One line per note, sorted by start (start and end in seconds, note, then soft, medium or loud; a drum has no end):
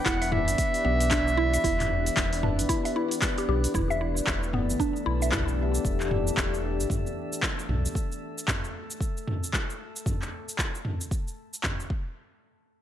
0.00 3.73 E3 medium
0.00 3.74 B3 medium
0.00 3.76 B3 medium
0.00 3.74 D4 medium
0.00 3.74 G4 medium
0.00 3.76 B4 medium
0.00 7.95 D5 medium
0.00 0.07 G5 medium
0.05 0.49 E1 medium
0.05 0.20 E4 loud
0.05 0.34 F#5 loud
0.05 kick loud
0.05 clap loud
0.05 open hi-hat medium
0.05 cabasa medium
0.21 0.31 E5 medium
0.21 open hi-hat soft
0.21 cabasa soft
0.32 0.41 E4 medium
0.32 3.21 E5 loud
0.32 mid tom medium
0.48 0.55 G1 medium
0.48 open hi-hat soft
0.48 cabasa medium
0.58 kick loud
0.58 open hi-hat medium
0.58 cabasa medium
0.74 open hi-hat soft
0.74 cabasa soft
0.85 1.58 B1 medium
0.85 1.10 B3 medium
1.00 open hi-hat soft
1.00 cabasa medium
1.11 1.26 D4 medium
1.11 kick loud
1.11 clap medium
1.11 open hi-hat medium
1.11 cabasa medium
1.28 cabasa soft
1.37 1.51 E4 loud
1.54 1.63 E5 medium
1.54 open hi-hat soft
1.54 cabasa medium
1.64 2.10 E1 loud
1.64 1.73 E4 medium
1.64 kick loud
1.64 open hi-hat medium
1.64 cabasa medium
1.80 clap soft
1.80 mid tom medium
1.80 open hi-hat soft
1.80 cabasa soft
2.06 open hi-hat soft
2.06 cabasa medium
2.17 2.60 E1 medium
2.17 2.42 B3 medium
2.17 kick loud
2.17 clap loud
2.17 open hi-hat medium
2.17 cabasa soft
2.33 open hi-hat soft
2.33 cabasa soft
2.43 2.58 D4 medium
2.43 mid tom medium
2.59 2.65 G1 medium
2.59 open hi-hat soft
2.59 cabasa medium
2.69 2.83 E4 loud
2.69 kick loud
2.69 open hi-hat medium
2.69 cabasa medium
2.85 2.95 E5 medium
2.85 open hi-hat soft
2.85 cabasa soft
2.96 3.10 E4 medium
3.11 open hi-hat soft
3.11 cabasa medium
3.22 kick loud
3.22 clap loud
3.22 open hi-hat medium
3.22 cabasa medium
3.38 3.48 G4 medium
3.38 open hi-hat soft
3.38 cabasa soft
3.48 3.67 B1 loud
3.48 3.63 G4 medium
3.64 open hi-hat soft
3.64 cabasa medium
3.74 4.21 E1 loud
3.74 7.95 E3 medium
3.74 10.08 A3 medium
3.74 3.88 E4 loud
3.74 10.08 A4 medium
3.74 kick loud
3.74 mid tom medium
3.74 cabasa medium
3.83 7.95 B3 medium
3.90 4.00 E5 medium
3.90 cabasa soft
4.01 4.10 E4 medium
4.17 cabasa medium
4.27 4.70 E1 medium
4.27 kick loud
4.27 clap medium
4.27 cabasa medium
4.43 7.95 D4 medium
4.43 cabasa soft
4.53 4.79 B3 medium
4.53 mid tom medium
4.69 4.76 G1 medium
4.69 cabasa medium
4.75 7.95 G4 medium
4.80 4.94 D4 medium
4.80 kick loud
4.80 cabasa medium
4.96 cabasa soft
5.06 5.79 B1 medium
5.06 5.20 E4 loud
5.22 5.32 E5 medium
5.22 cabasa medium
5.32 5.41 E4 medium
5.32 kick medium
5.32 clap loud
5.32 mid tom medium
5.32 cabasa medium
5.48 cabasa soft
5.75 cabasa medium
5.85 6.31 E1 loud
5.85 kick loud
5.85 cabasa medium
6.00 clap soft
6.00 cabasa soft
6.11 mid tom medium
6.28 cabasa medium
6.37 6.81 E1 medium
6.37 kick loud
6.37 clap medium
6.37 cabasa medium
6.54 cabasa soft
6.79 6.86 G1 medium
6.79 cabasa medium
6.90 kick loud
6.90 mid tom medium
6.90 cabasa medium
7.07 cabasa soft
7.33 cabasa medium
7.42 kick loud
7.42 clap loud
7.42 cabasa medium
7.59 cabasa soft
7.69 7.88 B1 medium
7.69 mid tom medium
7.86 cabasa medium
7.95 kick loud
7.95 cabasa medium
8.12 cabasa soft
8.38 cabasa medium
8.48 kick loud
8.48 clap medium
8.48 mid tom medium
8.48 cabasa medium
8.64 cabasa soft
8.91 cabasa medium
9.01 kick loud
9.01 cabasa medium
9.17 cabasa soft
9.28 mid tom medium
9.44 cabasa medium
9.53 kick loud
9.53 clap medium
9.53 cabasa soft
9.70 cabasa soft
9.96 cabasa medium
10.06 kick loud
10.06 mid tom medium
10.06 cabasa medium
10.22 clap soft
10.22 cabasa soft
10.49 cabasa medium
10.59 kick medium
10.59 clap medium
10.59 cabasa medium
10.75 cabasa soft
10.85 mid tom medium
11.01 cabasa medium
11.11 kick loud
11.11 cabasa medium
11.28 cabasa soft
11.54 cabasa medium
11.64 kick medium
11.64 clap medium
11.64 mid tom medium
11.64 cabasa medium
11.80 cabasa soft
11.90 kick medium